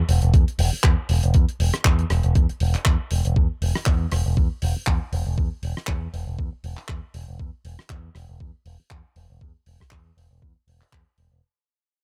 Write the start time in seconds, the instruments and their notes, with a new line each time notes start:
0.09 picked electric bass E1, open hi-hat
0.22 picked electric bass E1, closed hi-hat
0.34 picked electric bass E2, kick, closed hi-hat
0.48 closed hi-hat
0.59 picked electric bass E1, open hi-hat
0.73 muted picked electric bass stroke
0.84 picked electric bass E2, kick, clap
1.09 picked electric bass E1, open hi-hat
1.23 picked electric bass E1, closed hi-hat
1.34 picked electric bass E2, kick, closed hi-hat
1.49 closed hi-hat
1.60 picked electric bass E1, open hi-hat
1.73 muted picked electric bass stroke, cross-stick, closed hi-hat
1.85 picked electric bass E2, kick, clap, closed hi-hat
1.99 closed hi-hat
2.10 picked electric bass E1, cross-stick, open hi-hat
2.23 picked electric bass E1, closed hi-hat
2.35 picked electric bass E2, kick, closed hi-hat
2.49 muted picked electric bass stroke, closed hi-hat
2.60 picked electric bass E1, open hi-hat
2.74 muted picked electric bass stroke, clap, closed hi-hat
2.85 picked electric bass E2, kick, clap, closed hi-hat
3.11 picked electric bass E1, open hi-hat
3.25 picked electric bass E1, closed hi-hat
3.36 picked electric bass E2, kick
3.62 picked electric bass E1, open hi-hat
3.75 muted picked electric bass stroke, cross-stick
3.86 picked electric bass E2, kick, clap
4.12 picked electric bass E1, cross-stick, open hi-hat
4.26 picked electric bass E1
4.37 picked electric bass E2, kick
4.62 picked electric bass E1, open hi-hat
4.76 muted picked electric bass stroke
4.87 picked electric bass E2, kick, clap
5.13 picked electric bass E1, open hi-hat
5.27 picked electric bass E1
5.38 picked electric bass E2, kick
5.63 picked electric bass E1, open hi-hat
5.77 muted picked electric bass stroke, cross-stick
5.87 picked electric bass E2, kick, clap
6.14 picked electric bass E1, open hi-hat
6.27 picked electric bass E1
6.39 picked electric bass E2, kick
6.53 muted picked electric bass stroke
6.64 picked electric bass E1, open hi-hat
6.77 muted picked electric bass stroke, clap
6.88 picked electric bass E2, kick, clap
7.14 picked electric bass E1, open hi-hat
7.28 picked electric bass E1
7.39 picked electric bass E2, kick
7.65 picked electric bass E1, open hi-hat
7.79 muted picked electric bass stroke, cross-stick
7.90 picked electric bass E2, kick, clap
8.15 picked electric bass E1, cross-stick, open hi-hat
8.29 picked electric bass E1
8.40 picked electric bass E2, kick
8.66 picked electric bass E1, open hi-hat
8.80 muted picked electric bass stroke
8.91 picked electric bass E2, kick, clap
9.16 picked electric bass E1, open hi-hat
9.30 picked electric bass E1
9.41 picked electric bass E2, kick
9.66 picked electric bass E1, open hi-hat
9.80 muted picked electric bass stroke, kick, cross-stick
9.91 picked electric bass E2, kick, clap
10.17 picked electric bass E1, open hi-hat
10.31 picked electric bass E1
10.42 picked electric bass E2, kick
10.67 picked electric bass E1, open hi-hat
10.81 muted picked electric bass stroke, clap
10.93 picked electric bass E2, kick, clap
11.18 picked electric bass E1, open hi-hat
11.31 picked electric bass E1